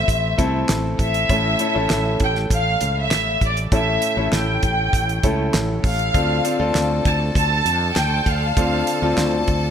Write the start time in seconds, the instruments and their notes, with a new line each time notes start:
Already playing: upright piano A2 A3 C4 E4 C5, violin section E5
0.08 fretless electric bass A1, kick, closed hi-hat
0.38 fretless electric bass C2, upright piano A3 C4 E4 A4, kick, closed hi-hat
0.69 fretless electric bass A1, snare, clap, closed hi-hat
0.99 fretless electric bass A1, violin section E5, kick, closed hi-hat
1.14 closed hi-hat
1.29 fretless electric bass A1, upright piano A2 A3 C#4 E4 A4, kick, closed hi-hat
1.59 upright piano A3 C#4 E4 A4, closed hi-hat
1.75 fretless electric bass A1, upright piano A3 C#4 E4 A4
1.90 fretless electric bass A1, snare, clap, closed hi-hat
2.20 fretless electric bass A1, violin section G5, kick, closed hi-hat
2.35 snare
2.50 fretless electric bass A1, violin section F5, kick, closed hi-hat
2.81 fretless electric bass C#2, closed hi-hat
2.99 violin section E5
3.11 fretless electric bass A1, snare, clap, closed hi-hat
3.41 fretless electric bass A1, violin section D5, kick, closed hi-hat
3.57 closed hi-hat
3.72 fretless electric bass A1, upright piano A2 A3 C#4 E4 A4, violin section E5, kick, closed hi-hat
4.02 closed hi-hat
4.17 fretless electric bass A1, upright piano A3 C#4 E4 A4
4.32 fretless electric bass A1, violin section G5, snare, clap, closed hi-hat
4.63 fretless electric bass A1, kick, closed hi-hat
4.93 fretless electric bass A1, kick, closed hi-hat
5.09 closed hi-hat
5.23 fretless electric bass C#2, upright piano A3 C#4 E4 A4, kick, closed hi-hat
5.54 fretless electric bass A1, snare, clap, closed hi-hat
5.84 fretless electric bass A1, violin section F5, kick, open hi-hat
5.99 closed hi-hat
6.14 fretless electric bass D2, upright piano D3 C4 D4 F4 A4, violin section A4 A5, kick, closed hi-hat
6.44 upright piano C4 D4 F4 A4, closed hi-hat
6.59 fretless electric bass D2, upright piano C4 D4 F4 A4
6.75 fretless electric bass D2, snare, clap, closed hi-hat
7.05 fretless electric bass D2, violin section A5, kick, closed hi-hat
7.35 fretless electric bass D2, violin section A5, kick, closed hi-hat
7.65 fretless electric bass F2, closed hi-hat
7.96 fretless electric bass D2, violin section G5, snare, clap, closed hi-hat
8.26 fretless electric bass D2, violin section F5, kick, closed hi-hat
8.57 fretless electric bass D2, upright piano D3 C4 D4 F4 A4, kick, closed hi-hat
8.87 closed hi-hat
9.02 fretless electric bass D2, upright piano C4 D4 F4 A4
9.17 fretless electric bass D2, snare, clap, closed hi-hat
9.48 fretless electric bass D2, kick, closed hi-hat